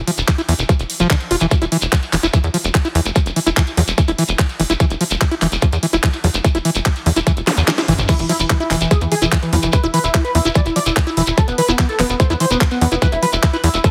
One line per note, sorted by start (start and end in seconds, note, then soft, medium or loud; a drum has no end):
0.07 0.10 F3 medium
0.07 open hi-hat loud
0.18 0.23 E1 medium
0.18 closed hi-hat soft
0.18 shekere medium
0.28 0.31 E3 medium
0.28 kick loud
0.28 clap loud
0.28 closed hi-hat medium
0.28 shekere medium
0.38 0.41 E4 medium
0.38 closed hi-hat soft
0.38 shekere soft
0.49 0.54 E2 medium
0.49 0.54 E3 medium
0.49 open hi-hat loud
0.59 0.65 E1 medium
0.59 closed hi-hat soft
0.59 shekere medium
0.69 0.72 F3 medium
0.69 kick loud
0.69 closed hi-hat medium
0.69 shekere medium
0.79 0.85 E1 medium
0.79 closed hi-hat soft
0.79 shekere soft
0.90 open hi-hat loud
1.00 1.06 E1 medium
1.00 1.07 F3 medium
1.00 closed hi-hat soft
1.00 shekere medium
1.10 1.15 D3 medium
1.10 kick loud
1.10 clap loud
1.10 closed hi-hat medium
1.10 shekere medium
1.20 closed hi-hat soft
1.20 shekere soft
1.31 1.36 E1 loud
1.31 1.36 F4 medium
1.31 open hi-hat medium
1.40 1.47 E1 medium
1.40 1.46 E3 medium
1.40 closed hi-hat soft
1.40 shekere medium
1.51 1.54 E3 medium
1.51 kick loud
1.51 closed hi-hat medium
1.51 shekere medium
1.62 1.67 E1 medium
1.62 1.65 E4 medium
1.62 closed hi-hat soft
1.62 shekere soft
1.72 1.77 E3 medium
1.72 open hi-hat loud
1.81 1.88 E1 medium
1.81 closed hi-hat soft
1.81 shekere medium
1.92 1.95 F3 medium
1.92 kick loud
1.92 clap loud
1.92 closed hi-hat medium
1.92 shekere medium
2.03 closed hi-hat soft
2.03 shekere soft
2.13 2.19 E1 medium
2.13 2.16 E3 medium
2.13 clap medium
2.13 open hi-hat loud
2.23 2.29 E1 medium
2.23 2.26 E4 medium
2.23 shekere medium
2.33 2.39 E3 medium
2.33 kick loud
2.33 closed hi-hat medium
2.33 shekere medium
2.44 2.50 E2 medium
2.44 closed hi-hat soft
2.44 shekere soft
2.54 2.57 F3 medium
2.54 open hi-hat loud
2.64 2.70 E1 medium
2.64 closed hi-hat soft
2.64 shekere medium
2.75 2.78 E3 medium
2.75 kick loud
2.75 clap loud
2.75 closed hi-hat medium
2.75 shekere medium
2.85 2.88 E4 medium
2.85 closed hi-hat soft
2.85 shekere soft
2.95 3.01 E2 medium
2.95 3.00 E3 medium
2.95 open hi-hat medium
3.05 3.11 F1 medium
3.05 closed hi-hat soft
3.05 shekere medium
3.16 3.19 F3 medium
3.16 kick loud
3.16 closed hi-hat medium
3.16 shekere medium
3.26 3.32 E1 medium
3.26 closed hi-hat soft
3.26 shekere soft
3.36 3.39 E3 medium
3.36 open hi-hat loud
3.46 3.52 E1 medium
3.46 3.50 E4 medium
3.46 closed hi-hat soft
3.46 shekere medium
3.57 3.62 E3 medium
3.57 kick loud
3.57 clap loud
3.57 closed hi-hat medium
3.57 shekere medium
3.67 closed hi-hat soft
3.67 shekere soft
3.77 3.83 E2 medium
3.77 3.80 F3 medium
3.77 open hi-hat medium
3.88 3.93 E1 medium
3.88 closed hi-hat soft
3.88 shekere medium
3.98 4.01 E3 medium
3.98 kick loud
3.98 closed hi-hat medium
3.98 shekere medium
4.08 4.14 E1 medium
4.08 4.11 E4 medium
4.08 closed hi-hat soft
4.08 shekere soft
4.18 4.23 E3 medium
4.18 open hi-hat loud
4.28 4.34 E1 medium
4.28 closed hi-hat soft
4.28 shekere medium
4.39 4.42 F3 medium
4.39 kick loud
4.39 clap loud
4.39 closed hi-hat medium
4.39 shekere medium
4.49 closed hi-hat soft
4.49 shekere soft
4.60 4.65 E1 medium
4.60 4.63 E3 medium
4.60 open hi-hat medium
4.70 4.76 E1 medium
4.70 4.73 E4 medium
4.70 closed hi-hat soft
4.70 shekere medium
4.80 4.85 E3 medium
4.80 kick loud
4.80 closed hi-hat medium
4.80 shekere medium
4.90 4.96 E1 medium
4.90 closed hi-hat soft
4.90 shekere soft
5.01 5.04 F3 medium
5.01 open hi-hat loud
5.11 5.17 E1 medium
5.11 closed hi-hat soft
5.11 shekere medium
5.21 5.24 E3 medium
5.21 kick loud
5.21 clap loud
5.21 closed hi-hat medium
5.21 shekere medium
5.31 5.34 E4 medium
5.31 closed hi-hat soft
5.31 shekere soft
5.42 5.47 E1 medium
5.42 5.47 E3 medium
5.42 clap medium
5.42 open hi-hat medium
5.52 5.58 E1 medium
5.52 closed hi-hat soft
5.52 shekere medium
5.62 5.65 F3 medium
5.62 kick loud
5.62 closed hi-hat medium
5.62 shekere medium
5.73 5.78 E2 medium
5.73 closed hi-hat soft
5.73 shekere soft
5.83 5.86 E3 medium
5.83 open hi-hat loud
5.93 5.99 E1 medium
5.93 5.96 E4 medium
5.93 closed hi-hat soft
5.93 shekere medium
6.03 6.08 E3 medium
6.03 kick loud
6.03 clap loud
6.03 closed hi-hat medium
6.03 shekere medium
6.13 closed hi-hat soft
6.13 shekere soft
6.24 6.30 E2 medium
6.24 6.27 F3 medium
6.24 open hi-hat medium
6.34 6.40 F1 medium
6.34 closed hi-hat soft
6.34 shekere medium
6.44 6.47 E3 medium
6.44 kick loud
6.44 closed hi-hat medium
6.44 shekere medium
6.55 6.60 E1 medium
6.55 6.58 E4 medium
6.55 closed hi-hat soft
6.55 shekere soft
6.65 6.70 E3 medium
6.65 open hi-hat loud
6.75 6.81 E1 medium
6.75 closed hi-hat soft
6.75 shekere medium
6.86 6.89 F3 medium
6.86 kick loud
6.86 clap loud
6.86 closed hi-hat medium
6.86 shekere medium
6.96 closed hi-hat soft
6.96 shekere soft
7.06 7.12 E2 medium
7.06 7.09 E3 medium
7.06 open hi-hat medium
7.16 7.22 E1 medium
7.16 7.19 E4 medium
7.16 closed hi-hat soft
7.16 shekere medium
7.27 7.32 E3 medium
7.27 kick loud
7.27 closed hi-hat medium
7.27 shekere medium
7.37 7.43 E1 medium
7.37 closed hi-hat soft
7.37 shekere soft
7.47 7.50 F3 medium
7.47 snare medium
7.47 open hi-hat loud
7.47 zap medium
7.57 7.63 E2 medium
7.57 shekere medium
7.68 7.71 E3 medium
7.68 snare medium
7.68 clap loud
7.68 closed hi-hat medium
7.68 shekere medium
7.78 7.81 E4 medium
7.78 snare medium
7.78 closed hi-hat soft
7.78 shekere soft
7.88 7.94 A1 loud
7.88 7.93 E3 medium
7.88 mid tom medium
7.88 open hi-hat medium
7.99 8.04 A1 medium
7.99 closed hi-hat soft
7.99 mid tom medium
7.99 shekere medium
8.08 8.14 E3 medium
8.08 8.15 E4 loud
8.08 kick loud
8.08 closed hi-hat medium
8.08 crash medium
8.08 shekere medium
8.19 8.25 E1 medium
8.19 8.25 E3 medium
8.19 closed hi-hat soft
8.19 shekere soft
8.29 8.32 F3 medium
8.29 8.36 E4 medium
8.29 open hi-hat loud
8.40 8.45 E1 medium
8.40 8.46 E3 medium
8.40 closed hi-hat soft
8.40 shekere medium
8.50 8.53 E3 medium
8.50 8.56 E3 medium
8.50 kick loud
8.50 clap loud
8.50 closed hi-hat medium
8.50 shekere medium
8.60 8.63 E4 medium
8.60 8.66 E4 loud
8.60 closed hi-hat soft
8.60 shekere soft
8.71 8.76 E1 medium
8.71 8.76 E3 medium
8.71 8.77 E3 medium
8.71 clap medium
8.71 open hi-hat loud
8.81 8.86 E1 medium
8.81 8.87 E3 medium
8.81 closed hi-hat soft
8.81 shekere medium
8.91 8.94 F3 medium
8.91 8.97 G#4 medium
8.91 kick loud
8.91 closed hi-hat medium
8.91 shekere medium
9.01 9.07 E2 medium
9.01 9.07 E3 medium
9.01 closed hi-hat soft
9.01 shekere soft
9.12 9.15 E3 medium
9.12 9.18 G#4 medium
9.12 open hi-hat loud
9.22 9.28 E1 medium
9.22 9.28 E3 medium
9.22 9.25 E4 medium
9.22 closed hi-hat soft
9.22 shekere medium
9.32 9.37 E3 medium
9.32 kick loud
9.32 clap loud
9.32 closed hi-hat medium
9.32 shekere medium
9.42 9.49 E3 medium
9.42 closed hi-hat soft
9.42 shekere soft
9.53 9.58 E2 medium
9.53 9.59 E3 medium
9.53 9.56 F3 medium
9.53 open hi-hat medium
9.62 9.69 F1 medium
9.62 9.69 E3 medium
9.62 closed hi-hat soft
9.62 shekere medium
9.72 9.76 E3 medium
9.72 9.79 B4 loud
9.72 kick loud
9.72 closed hi-hat medium
9.72 shekere medium
9.83 9.89 E1 medium
9.83 9.87 E4 medium
9.83 9.90 E4 medium
9.83 closed hi-hat soft
9.83 shekere soft
9.94 9.99 E3 medium
9.94 10.00 B4 loud
9.94 open hi-hat loud
10.04 10.10 E1 medium
10.04 10.10 E4 medium
10.04 closed hi-hat soft
10.04 shekere medium
10.14 10.17 F3 medium
10.14 10.20 E4 medium
10.14 kick loud
10.14 clap loud
10.14 closed hi-hat medium
10.14 shekere medium
10.25 10.31 B4 loud
10.25 closed hi-hat soft
10.25 shekere soft
10.35 10.41 E2 loud
10.35 10.38 E3 medium
10.35 10.41 E4 medium
10.35 open hi-hat loud
10.45 10.51 E1 medium
10.45 10.48 E4 medium
10.45 10.51 E4 medium
10.45 shekere medium
10.55 10.60 E3 medium
10.55 10.62 D5 medium
10.55 kick loud
10.55 closed hi-hat medium
10.55 shekere medium
10.66 10.71 E1 medium
10.66 10.72 E4 medium
10.66 closed hi-hat soft
10.66 shekere soft
10.76 10.79 F3 medium
10.76 10.82 D5 medium
10.76 open hi-hat loud
10.86 10.92 E1 medium
10.86 10.92 E4 medium
10.86 closed hi-hat soft
10.86 shekere medium
10.97 11.00 E3 medium
10.97 kick loud
10.97 clap loud
10.97 closed hi-hat medium
10.97 shekere medium
11.07 11.10 E4 medium
11.07 11.13 E4 medium
11.07 closed hi-hat soft
11.07 shekere soft
11.17 11.23 E1 loud
11.17 11.22 E3 medium
11.17 11.23 E4 medium
11.17 open hi-hat loud
11.27 11.33 E1 medium
11.27 11.34 E4 medium
11.27 closed hi-hat soft
11.27 shekere medium
11.38 11.41 F3 medium
11.38 11.44 A4 loud
11.38 kick loud
11.38 closed hi-hat medium
11.38 shekere medium
11.48 11.54 E1 medium
11.48 11.54 B3 medium
11.48 closed hi-hat soft
11.48 shekere soft
11.58 11.61 E3 medium
11.58 11.64 B4 medium
11.58 open hi-hat loud
11.68 11.74 E1 medium
11.68 11.75 B3 medium
11.68 11.71 E4 medium
11.68 shekere medium
11.79 11.84 E3 medium
11.79 11.85 B3 medium
11.79 kick loud
11.79 clap loud
11.79 closed hi-hat medium
11.79 shekere medium
11.89 11.95 A4 loud
11.89 closed hi-hat soft
11.89 shekere soft
11.99 12.05 E1 loud
11.99 12.02 F3 medium
11.99 12.05 B3 medium
11.99 clap medium
11.99 open hi-hat loud
12.10 12.15 E1 medium
12.10 12.16 B3 medium
12.10 closed hi-hat soft
12.10 shekere medium
12.20 12.23 E3 medium
12.20 12.26 C5 medium
12.20 kick loud
12.20 closed hi-hat medium
12.20 shekere medium
12.30 12.36 E2 medium
12.30 12.36 B3 medium
12.30 12.33 E4 medium
12.30 closed hi-hat soft
12.30 shekere soft
12.40 12.45 E3 medium
12.40 12.46 C5 medium
12.40 open hi-hat loud
12.51 12.56 E1 medium
12.51 12.57 B3 medium
12.51 closed hi-hat soft
12.51 shekere medium
12.61 12.64 F3 medium
12.61 kick loud
12.61 clap loud
12.61 closed hi-hat medium
12.71 12.77 B3 medium
12.71 closed hi-hat soft
12.71 shekere soft
12.81 12.87 E2 medium
12.81 12.84 E3 medium
12.81 12.88 B3 medium
12.81 open hi-hat medium
12.92 12.97 F1 medium
12.92 12.98 B3 medium
12.92 12.95 E4 medium
12.92 closed hi-hat soft
12.92 shekere medium
13.02 13.07 E3 medium
13.02 13.08 B4 loud
13.02 kick loud
13.02 closed hi-hat medium
13.02 shekere medium
13.12 13.18 E1 medium
13.12 13.18 E4 medium
13.12 closed hi-hat soft
13.12 shekere soft
13.23 13.26 F3 medium
13.23 13.29 B4 loud
13.23 open hi-hat loud
13.33 13.39 E1 medium
13.33 13.39 E4 medium
13.33 closed hi-hat soft
13.33 shekere medium
13.43 13.46 E3 medium
13.43 13.49 E4 medium
13.43 kick loud
13.43 clap loud
13.43 closed hi-hat medium
13.43 shekere medium
13.53 13.56 E4 medium
13.53 13.59 B4 loud
13.53 closed hi-hat soft
13.53 shekere soft
13.64 13.69 E2 loud
13.64 13.69 E3 medium
13.64 13.70 E4 medium
13.64 open hi-hat loud
13.74 13.80 E1 medium
13.74 13.80 E4 medium
13.74 closed hi-hat soft
13.74 shekere medium
13.84 13.87 F3 medium
13.84 13.90 A4 medium
13.84 kick loud
13.84 closed hi-hat medium
13.84 shekere medium